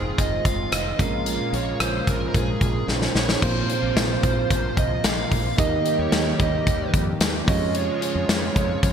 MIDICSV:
0, 0, Header, 1, 6, 480
1, 0, Start_track
1, 0, Tempo, 540541
1, 1121, Time_signature, 4, 2, 24, 8
1, 7927, End_track
2, 0, Start_track
2, 0, Title_t, "Lead electric guitar"
2, 0, Program_c, 0, 29
2, 0, Note_on_c, 0, 68, 81
2, 166, Note_on_c, 0, 75, 85
2, 186, Note_off_c, 0, 68, 0
2, 387, Note_off_c, 0, 75, 0
2, 403, Note_on_c, 0, 77, 92
2, 625, Note_off_c, 0, 77, 0
2, 646, Note_on_c, 0, 75, 93
2, 887, Note_on_c, 0, 77, 96
2, 890, Note_off_c, 0, 75, 0
2, 1370, Note_on_c, 0, 73, 87
2, 1378, Note_off_c, 0, 77, 0
2, 1608, Note_off_c, 0, 73, 0
2, 1611, Note_on_c, 0, 72, 88
2, 1850, Note_on_c, 0, 70, 78
2, 1853, Note_off_c, 0, 72, 0
2, 2011, Note_off_c, 0, 70, 0
2, 2033, Note_on_c, 0, 70, 50
2, 2088, Note_off_c, 0, 70, 0
2, 2100, Note_on_c, 0, 68, 69
2, 2537, Note_off_c, 0, 68, 0
2, 2814, Note_on_c, 0, 73, 69
2, 3031, Note_off_c, 0, 73, 0
2, 3043, Note_on_c, 0, 72, 84
2, 3278, Note_off_c, 0, 72, 0
2, 3288, Note_on_c, 0, 72, 83
2, 3969, Note_off_c, 0, 72, 0
2, 4005, Note_on_c, 0, 72, 86
2, 4226, Note_off_c, 0, 72, 0
2, 4241, Note_on_c, 0, 75, 90
2, 4475, Note_on_c, 0, 77, 92
2, 4488, Note_off_c, 0, 75, 0
2, 4924, Note_off_c, 0, 77, 0
2, 4956, Note_on_c, 0, 75, 102
2, 5320, Note_off_c, 0, 75, 0
2, 5324, Note_on_c, 0, 73, 84
2, 5686, Note_off_c, 0, 73, 0
2, 5689, Note_on_c, 0, 75, 85
2, 6132, Note_off_c, 0, 75, 0
2, 6646, Note_on_c, 0, 75, 78
2, 6866, Note_off_c, 0, 75, 0
2, 6890, Note_on_c, 0, 73, 89
2, 7112, Note_off_c, 0, 73, 0
2, 7122, Note_on_c, 0, 73, 83
2, 7806, Note_off_c, 0, 73, 0
2, 7844, Note_on_c, 0, 73, 82
2, 7927, Note_off_c, 0, 73, 0
2, 7927, End_track
3, 0, Start_track
3, 0, Title_t, "Tine electric piano"
3, 0, Program_c, 1, 4
3, 0, Control_c, 1, 64, 127
3, 0, Note_on_c, 1, 56, 71
3, 0, Note_on_c, 1, 63, 65
3, 0, Note_on_c, 1, 65, 67
3, 0, Note_on_c, 1, 72, 78
3, 0, Note_on_c, 1, 80, 70
3, 840, Note_off_c, 1, 56, 0
3, 845, Note_off_c, 1, 63, 0
3, 848, Note_off_c, 1, 65, 0
3, 851, Note_off_c, 1, 72, 0
3, 877, Note_on_c, 1, 56, 62
3, 882, Note_on_c, 1, 61, 55
3, 887, Note_on_c, 1, 46, 55
3, 890, Note_on_c, 1, 65, 57
3, 893, Control_c, 1, 64, 0
3, 897, Note_on_c, 1, 70, 66
3, 900, Note_off_c, 1, 80, 0
3, 1027, Control_c, 1, 64, 127
3, 1568, Note_off_c, 1, 46, 0
3, 2525, Note_off_c, 1, 56, 0
3, 2528, Note_off_c, 1, 61, 0
3, 2532, Note_off_c, 1, 65, 0
3, 2535, Note_off_c, 1, 70, 0
3, 2554, Note_on_c, 1, 56, 44
3, 2560, Note_on_c, 1, 61, 44
3, 2561, Note_on_c, 1, 65, 41
3, 2564, Note_on_c, 1, 70, 40
3, 2620, Note_off_c, 1, 70, 0
3, 2623, Note_on_c, 1, 72, 52
3, 3033, Note_on_c, 1, 58, 65
3, 3035, Note_off_c, 1, 65, 0
3, 3037, Note_off_c, 1, 56, 0
3, 3040, Note_off_c, 1, 61, 0
3, 3040, Note_on_c, 1, 60, 56
3, 3041, Note_off_c, 1, 72, 0
3, 3043, Note_on_c, 1, 46, 64
3, 3045, Note_on_c, 1, 65, 61
3, 3052, Note_on_c, 1, 72, 67
3, 3053, Control_c, 1, 64, 0
3, 3190, Control_c, 1, 64, 127
3, 3726, Note_off_c, 1, 46, 0
3, 4921, Note_off_c, 1, 58, 0
3, 4925, Note_off_c, 1, 60, 0
3, 4927, Note_off_c, 1, 65, 0
3, 4931, Note_off_c, 1, 72, 0
3, 4947, Note_on_c, 1, 58, 69
3, 4955, Note_on_c, 1, 63, 58
3, 4957, Note_on_c, 1, 51, 61
3, 4962, Note_on_c, 1, 67, 61
3, 4968, Note_on_c, 1, 75, 71
3, 4973, Control_c, 1, 64, 0
3, 5109, Control_c, 1, 64, 127
3, 5643, Note_off_c, 1, 51, 0
3, 6600, Note_off_c, 1, 58, 0
3, 6604, Note_off_c, 1, 63, 0
3, 6607, Note_off_c, 1, 67, 0
3, 6611, Note_off_c, 1, 75, 0
3, 6628, Note_on_c, 1, 56, 60
3, 6635, Note_on_c, 1, 61, 57
3, 6643, Note_on_c, 1, 65, 58
3, 6649, Note_on_c, 1, 73, 67
3, 6653, Control_c, 1, 64, 0
3, 6816, Control_c, 1, 64, 127
3, 7927, Note_off_c, 1, 56, 0
3, 7927, Note_off_c, 1, 61, 0
3, 7927, Note_off_c, 1, 65, 0
3, 7927, Note_off_c, 1, 73, 0
3, 7927, End_track
4, 0, Start_track
4, 0, Title_t, "Analog synth pad"
4, 0, Program_c, 2, 89
4, 0, Note_on_c, 2, 51, 74
4, 0, Note_on_c, 2, 56, 68
4, 0, Note_on_c, 2, 60, 69
4, 0, Note_on_c, 2, 65, 83
4, 844, Note_off_c, 2, 60, 0
4, 859, Note_off_c, 2, 51, 0
4, 859, Note_off_c, 2, 56, 0
4, 882, Note_on_c, 2, 49, 76
4, 882, Note_on_c, 2, 56, 66
4, 883, Note_on_c, 2, 58, 67
4, 3004, Note_off_c, 2, 65, 0
4, 3020, Note_off_c, 2, 49, 0
4, 3020, Note_off_c, 2, 56, 0
4, 3020, Note_off_c, 2, 58, 0
4, 3036, Note_on_c, 2, 48, 73
4, 3036, Note_on_c, 2, 53, 69
4, 3037, Note_on_c, 2, 58, 71
4, 3037, Note_on_c, 2, 65, 86
4, 4939, Note_off_c, 2, 48, 0
4, 4939, Note_off_c, 2, 53, 0
4, 4939, Note_off_c, 2, 65, 0
4, 4954, Note_on_c, 2, 55, 68
4, 4955, Note_on_c, 2, 51, 73
4, 4955, Note_on_c, 2, 67, 86
4, 6603, Note_off_c, 2, 58, 0
4, 6620, Note_off_c, 2, 55, 0
4, 6621, Note_off_c, 2, 51, 0
4, 6621, Note_off_c, 2, 67, 0
4, 6640, Note_on_c, 2, 56, 70
4, 6643, Note_on_c, 2, 49, 72
4, 6643, Note_on_c, 2, 53, 67
4, 6643, Note_on_c, 2, 65, 83
4, 7927, Note_off_c, 2, 49, 0
4, 7927, Note_off_c, 2, 53, 0
4, 7927, Note_off_c, 2, 56, 0
4, 7927, Note_off_c, 2, 65, 0
4, 7927, End_track
5, 0, Start_track
5, 0, Title_t, "Fretless electric bass"
5, 0, Program_c, 3, 35
5, 0, Note_on_c, 3, 29, 86
5, 94, Note_off_c, 3, 29, 0
5, 163, Note_on_c, 3, 29, 100
5, 335, Note_off_c, 3, 29, 0
5, 399, Note_on_c, 3, 29, 87
5, 572, Note_off_c, 3, 29, 0
5, 638, Note_on_c, 3, 29, 98
5, 812, Note_off_c, 3, 29, 0
5, 882, Note_on_c, 3, 34, 80
5, 1227, Note_off_c, 3, 34, 0
5, 1356, Note_on_c, 3, 34, 96
5, 1530, Note_off_c, 3, 34, 0
5, 1597, Note_on_c, 3, 34, 87
5, 1771, Note_off_c, 3, 34, 0
5, 1841, Note_on_c, 3, 34, 83
5, 2014, Note_off_c, 3, 34, 0
5, 2081, Note_on_c, 3, 34, 95
5, 2254, Note_off_c, 3, 34, 0
5, 2318, Note_on_c, 3, 34, 89
5, 2492, Note_off_c, 3, 34, 0
5, 2556, Note_on_c, 3, 34, 92
5, 2730, Note_off_c, 3, 34, 0
5, 2797, Note_on_c, 3, 34, 87
5, 2971, Note_off_c, 3, 34, 0
5, 3040, Note_on_c, 3, 34, 93
5, 3213, Note_off_c, 3, 34, 0
5, 3399, Note_on_c, 3, 34, 89
5, 3486, Note_off_c, 3, 34, 0
5, 3517, Note_on_c, 3, 34, 103
5, 3691, Note_off_c, 3, 34, 0
5, 3758, Note_on_c, 3, 34, 91
5, 3932, Note_off_c, 3, 34, 0
5, 4000, Note_on_c, 3, 34, 103
5, 4173, Note_off_c, 3, 34, 0
5, 4237, Note_on_c, 3, 36, 88
5, 4411, Note_off_c, 3, 36, 0
5, 4478, Note_on_c, 3, 34, 103
5, 4652, Note_off_c, 3, 34, 0
5, 4720, Note_on_c, 3, 34, 84
5, 4893, Note_off_c, 3, 34, 0
5, 4959, Note_on_c, 3, 39, 95
5, 5132, Note_off_c, 3, 39, 0
5, 5318, Note_on_c, 3, 39, 93
5, 5406, Note_off_c, 3, 39, 0
5, 5436, Note_on_c, 3, 39, 92
5, 5611, Note_off_c, 3, 39, 0
5, 5681, Note_on_c, 3, 39, 86
5, 5853, Note_off_c, 3, 39, 0
5, 5922, Note_on_c, 3, 39, 99
5, 6094, Note_off_c, 3, 39, 0
5, 6158, Note_on_c, 3, 41, 84
5, 6332, Note_off_c, 3, 41, 0
5, 6397, Note_on_c, 3, 39, 102
5, 6571, Note_off_c, 3, 39, 0
5, 6641, Note_on_c, 3, 41, 86
5, 6986, Note_off_c, 3, 41, 0
5, 7240, Note_on_c, 3, 41, 88
5, 7327, Note_off_c, 3, 41, 0
5, 7358, Note_on_c, 3, 41, 99
5, 7532, Note_off_c, 3, 41, 0
5, 7599, Note_on_c, 3, 41, 89
5, 7773, Note_off_c, 3, 41, 0
5, 7841, Note_on_c, 3, 41, 94
5, 7927, Note_off_c, 3, 41, 0
5, 7927, End_track
6, 0, Start_track
6, 0, Title_t, "Drums"
6, 163, Note_on_c, 9, 36, 83
6, 166, Note_on_c, 9, 42, 71
6, 252, Note_off_c, 9, 36, 0
6, 254, Note_off_c, 9, 42, 0
6, 400, Note_on_c, 9, 36, 85
6, 401, Note_on_c, 9, 42, 63
6, 489, Note_off_c, 9, 36, 0
6, 490, Note_off_c, 9, 42, 0
6, 641, Note_on_c, 9, 42, 96
6, 644, Note_on_c, 9, 37, 104
6, 730, Note_off_c, 9, 42, 0
6, 733, Note_off_c, 9, 37, 0
6, 882, Note_on_c, 9, 36, 90
6, 885, Note_on_c, 9, 42, 66
6, 970, Note_off_c, 9, 36, 0
6, 974, Note_off_c, 9, 42, 0
6, 1121, Note_on_c, 9, 42, 85
6, 1210, Note_off_c, 9, 42, 0
6, 1364, Note_on_c, 9, 42, 72
6, 1453, Note_off_c, 9, 42, 0
6, 1601, Note_on_c, 9, 37, 108
6, 1602, Note_on_c, 9, 42, 83
6, 1690, Note_off_c, 9, 37, 0
6, 1691, Note_off_c, 9, 42, 0
6, 1841, Note_on_c, 9, 36, 84
6, 1843, Note_on_c, 9, 42, 64
6, 1930, Note_off_c, 9, 36, 0
6, 1932, Note_off_c, 9, 42, 0
6, 2082, Note_on_c, 9, 36, 85
6, 2084, Note_on_c, 9, 42, 72
6, 2171, Note_off_c, 9, 36, 0
6, 2172, Note_off_c, 9, 42, 0
6, 2319, Note_on_c, 9, 36, 88
6, 2320, Note_on_c, 9, 42, 64
6, 2408, Note_off_c, 9, 36, 0
6, 2409, Note_off_c, 9, 42, 0
6, 2561, Note_on_c, 9, 38, 51
6, 2650, Note_off_c, 9, 38, 0
6, 2681, Note_on_c, 9, 38, 56
6, 2770, Note_off_c, 9, 38, 0
6, 2802, Note_on_c, 9, 38, 76
6, 2890, Note_off_c, 9, 38, 0
6, 2921, Note_on_c, 9, 38, 76
6, 3010, Note_off_c, 9, 38, 0
6, 3040, Note_on_c, 9, 36, 101
6, 3042, Note_on_c, 9, 49, 90
6, 3129, Note_off_c, 9, 36, 0
6, 3131, Note_off_c, 9, 49, 0
6, 3282, Note_on_c, 9, 42, 72
6, 3371, Note_off_c, 9, 42, 0
6, 3522, Note_on_c, 9, 38, 111
6, 3524, Note_on_c, 9, 42, 83
6, 3611, Note_off_c, 9, 38, 0
6, 3612, Note_off_c, 9, 42, 0
6, 3760, Note_on_c, 9, 36, 86
6, 3760, Note_on_c, 9, 42, 63
6, 3848, Note_off_c, 9, 36, 0
6, 3849, Note_off_c, 9, 42, 0
6, 4000, Note_on_c, 9, 36, 90
6, 4002, Note_on_c, 9, 42, 76
6, 4089, Note_off_c, 9, 36, 0
6, 4091, Note_off_c, 9, 42, 0
6, 4238, Note_on_c, 9, 36, 89
6, 4239, Note_on_c, 9, 42, 65
6, 4327, Note_off_c, 9, 36, 0
6, 4328, Note_off_c, 9, 42, 0
6, 4476, Note_on_c, 9, 42, 99
6, 4479, Note_on_c, 9, 38, 106
6, 4564, Note_off_c, 9, 42, 0
6, 4568, Note_off_c, 9, 38, 0
6, 4720, Note_on_c, 9, 36, 83
6, 4720, Note_on_c, 9, 46, 67
6, 4809, Note_off_c, 9, 36, 0
6, 4809, Note_off_c, 9, 46, 0
6, 4959, Note_on_c, 9, 36, 102
6, 4960, Note_on_c, 9, 42, 90
6, 5047, Note_off_c, 9, 36, 0
6, 5048, Note_off_c, 9, 42, 0
6, 5200, Note_on_c, 9, 42, 75
6, 5289, Note_off_c, 9, 42, 0
6, 5437, Note_on_c, 9, 38, 120
6, 5438, Note_on_c, 9, 42, 82
6, 5526, Note_off_c, 9, 38, 0
6, 5527, Note_off_c, 9, 42, 0
6, 5680, Note_on_c, 9, 36, 90
6, 5680, Note_on_c, 9, 42, 61
6, 5769, Note_off_c, 9, 36, 0
6, 5769, Note_off_c, 9, 42, 0
6, 5921, Note_on_c, 9, 36, 87
6, 5923, Note_on_c, 9, 42, 79
6, 6010, Note_off_c, 9, 36, 0
6, 6012, Note_off_c, 9, 42, 0
6, 6159, Note_on_c, 9, 36, 91
6, 6162, Note_on_c, 9, 42, 66
6, 6248, Note_off_c, 9, 36, 0
6, 6251, Note_off_c, 9, 42, 0
6, 6399, Note_on_c, 9, 42, 104
6, 6402, Note_on_c, 9, 38, 109
6, 6488, Note_off_c, 9, 42, 0
6, 6491, Note_off_c, 9, 38, 0
6, 6641, Note_on_c, 9, 36, 97
6, 6643, Note_on_c, 9, 46, 66
6, 6730, Note_off_c, 9, 36, 0
6, 6731, Note_off_c, 9, 46, 0
6, 6880, Note_on_c, 9, 42, 96
6, 6968, Note_off_c, 9, 42, 0
6, 7123, Note_on_c, 9, 42, 78
6, 7212, Note_off_c, 9, 42, 0
6, 7363, Note_on_c, 9, 38, 121
6, 7364, Note_on_c, 9, 42, 88
6, 7452, Note_off_c, 9, 38, 0
6, 7453, Note_off_c, 9, 42, 0
6, 7600, Note_on_c, 9, 42, 60
6, 7601, Note_on_c, 9, 36, 87
6, 7689, Note_off_c, 9, 42, 0
6, 7690, Note_off_c, 9, 36, 0
6, 7841, Note_on_c, 9, 36, 91
6, 7842, Note_on_c, 9, 42, 78
6, 7927, Note_off_c, 9, 36, 0
6, 7927, Note_off_c, 9, 42, 0
6, 7927, End_track
0, 0, End_of_file